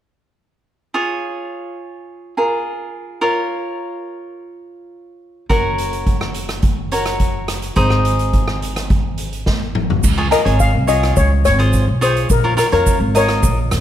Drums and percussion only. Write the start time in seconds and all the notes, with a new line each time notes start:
5.50 kick, closed hi-hat
5.78 closed hi-hat
5.93 closed hi-hat
6.07 kick, closed hi-hat
6.21 cross-stick
6.34 closed hi-hat
6.49 cross-stick, closed hi-hat
6.62 kick, closed hi-hat
6.92 closed hi-hat
7.06 cross-stick, closed hi-hat
7.20 kick, closed hi-hat
7.48 cross-stick, closed hi-hat
7.62 closed hi-hat
7.76 kick, closed hi-hat
7.90 cross-stick
8.05 closed hi-hat
8.19 closed hi-hat
8.33 kick, closed hi-hat
8.48 cross-stick
8.62 closed hi-hat
8.76 cross-stick, closed hi-hat
8.90 kick, closed hi-hat
9.18 closed hi-hat
9.33 closed hi-hat
9.46 kick, snare
9.75 mid tom
9.90 floor tom
10.03 kick, crash, shaker
10.32 cross-stick, closed hi-hat, shaker
10.46 closed hi-hat
10.60 kick, closed hi-hat, shaker
10.88 closed hi-hat, shaker
11.03 cross-stick, closed hi-hat
11.16 kick, closed hi-hat, shaker
11.45 cross-stick, closed hi-hat, shaker
11.59 closed hi-hat
11.73 kick, closed hi-hat, shaker
12.02 closed hi-hat, shaker
12.17 closed hi-hat
12.30 kick, closed hi-hat, shaker
12.58 cross-stick, closed hi-hat, shaker
12.72 closed hi-hat
12.86 kick, closed hi-hat, shaker
13.15 closed hi-hat, shaker
13.29 cross-stick, closed hi-hat
13.43 kick, closed hi-hat, shaker
13.71 cross-stick, closed hi-hat, shaker